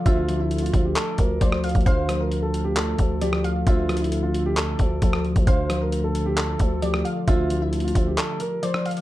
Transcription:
Already playing: D3 F3 A3 F4 A4 D5
0.06 D2 D3 F4 E5, kick, closed hi-hat
0.28 F3, closed hi-hat
0.39 E4
0.51 closed hi-hat
0.58 F4, closed hi-hat
0.66 closed hi-hat
0.73 D2, kick, closed hi-hat
0.85 G4
0.96 A4 D5, clap, closed hi-hat
1.18 D2 A#4, kick, closed hi-hat
1.41 D2 F3 C5 D5, kick, closed hi-hat
1.52 cross-stick
1.64 F5, closed hi-hat, open hi-hat
1.69 closed hi-hat
1.75 D2, kick, closed hi-hat
1.81 closed hi-hat
1.86 D2 D3 A4 C5 F5, kick, closed hi-hat
2.09 F3, cross-stick, closed hi-hat
2.20 A#4
2.32 closed hi-hat
2.43 A4
2.54 closed hi-hat
2.64 G4
2.76 A4 D5, clap, closed hi-hat
2.99 D2, kick, closed hi-hat
3.21 F3 G4 D5, closed hi-hat
3.33 cross-stick
3.44 F5, closed hi-hat
3.67 D2 D3 F4 E5, kick, closed hi-hat
3.89 F3, cross-stick, closed hi-hat
3.97 E4, closed hi-hat
4.04 closed hi-hat
4.12 closed hi-hat
4.23 F4
4.34 closed hi-hat
4.46 G4
4.56 A4 D5, clap, closed hi-hat
4.79 D2, kick, closed hi-hat
5.02 D2 F3 A4, kick, closed hi-hat
5.13 cross-stick
5.25 closed hi-hat
5.36 D2, kick, closed hi-hat
5.47 D2 D3 A3 F4 A4 C5 F5, kick, closed hi-hat
5.70 F3, cross-stick, closed hi-hat
5.81 A#4
5.92 closed hi-hat
6.04 A4
6.15 closed hi-hat
6.26 G4
6.37 A4 D5, clap, closed hi-hat
6.59 D2, kick, closed hi-hat
6.82 F3 G4 D5, closed hi-hat
6.94 cross-stick
7.05 F5, closed hi-hat
7.27 D2 D3 F4 G4 E5, kick, closed hi-hat
7.50 F3, closed hi-hat
7.61 E4
7.73 closed hi-hat
7.80 closed hi-hat
7.84 F4, closed hi-hat
7.95 D2, kick, closed hi-hat
8.07 G4
8.17 A4 D5, clap, closed hi-hat
8.40 A#4, closed hi-hat
8.63 F3 C5 D5, closed hi-hat
8.74 cross-stick
8.86 F5, closed hi-hat, open hi-hat
8.91 closed hi-hat
8.97 closed hi-hat

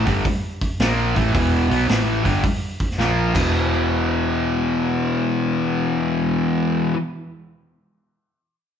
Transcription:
0.06 G1 G2 D3 G3, kick, open hi-hat
0.25 kick, open hi-hat
0.61 kick, open hi-hat
0.80 A#1 A#2 F3 A#3, snare, open hi-hat
1.15 A1 A2 E3 A3, kick, open hi-hat
1.33 E1 E2 B2 E3, kick, open hi-hat
1.69 B1 B2 F#3 B3, open hi-hat
1.88 A1 A2 E3 A3, snare, open hi-hat
2.24 G1 G2 D3 G3, kick, open hi-hat
2.44 kick, open hi-hat
2.80 kick, open hi-hat
2.91 snare
2.98 A#1 A#2 F3 A#3, snare
3.33 E1 E2 B2, kick, crash
3.38 E3

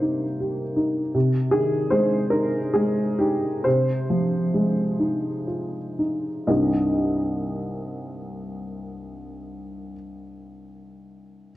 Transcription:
Already playing: C3 G3 A#3 C5
0.02 D#4
0.41 G4
0.77 D#4
1.15 C3
1.51 D#3 G#4
1.90 G#3 C5
2.30 D#4 A#4
2.73 G#3 G#4
3.19 D#4 G4
3.64 C3 C5
4.10 F3
4.54 G#3
5.00 D#4
5.47 F4
5.99 D#4
6.47 C2 G2 G3 A#3 C4 D#4 D#5

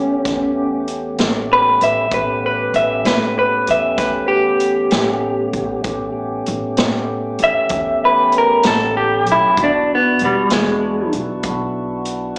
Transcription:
Already playing: E2 A3 B3 C#4 G4
0.25 E2, kick, snare, closed hi-hat
0.88 closed hi-hat
1.18 A1, snare, closed hi-hat
1.53 B4
1.81 A1 E5, closed hi-hat
2.11 A1 A3 B3 C#4 G4 B4, kick, closed hi-hat
2.46 B4
2.74 A1 E5, closed hi-hat
3.05 A2 B4, snare, closed hi-hat
3.39 B4
3.67 E2 E5, closed hi-hat
3.98 E2 B4, kick, snare, closed hi-hat
4.28 G4
4.60 closed hi-hat
4.91 A1, snare, closed hi-hat
5.53 A1, kick, closed hi-hat
5.84 A1 A3 B3 C#4 G4, kick, closed hi-hat
6.46 A1, closed hi-hat
6.77 A2, snare, closed hi-hat
7.39 E2, closed hi-hat
7.44 E5
7.69 E2, kick, closed hi-hat
8.05 B4
8.32 closed hi-hat
8.38 A#4
8.63 A1 A4, snare, closed hi-hat
8.97 G4
9.26 B1, closed hi-hat
9.32 E4
9.56 E1 B3 D4 E4 F#4, kick, closed hi-hat
9.64 D4
9.95 B3
10.19 E1, closed hi-hat
10.25 G3
10.50 E2 G#3, snare, closed hi-hat
11.13 B1, closed hi-hat
11.43 B1, kick, closed hi-hat
12.05 closed hi-hat

